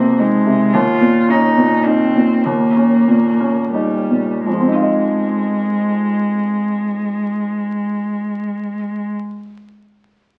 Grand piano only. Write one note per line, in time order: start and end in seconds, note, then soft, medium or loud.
0.00 0.69 F2 soft
0.00 0.46 C3 soft
0.00 0.76 C4 soft
0.19 0.62 D#4 soft
0.46 0.73 C3 soft
0.74 2.42 D#2 soft
1.01 1.46 A#2 soft
1.29 1.74 C#4 soft
1.58 2.04 A#2 soft
1.87 2.34 D#4 soft
2.16 2.64 A#2 soft
2.46 4.43 D#2 soft
2.76 3.28 C#4 soft
3.08 3.61 A#2 soft
3.40 3.96 C#4 soft
3.74 4.32 D#4 soft
4.11 4.47 A#2 soft
4.47 9.12 F2 soft
4.54 9.19 F3 soft
4.61 9.26 C4 soft
4.68 9.33 D#4 soft
4.75 9.40 F4 soft
4.82 9.47 D#5 soft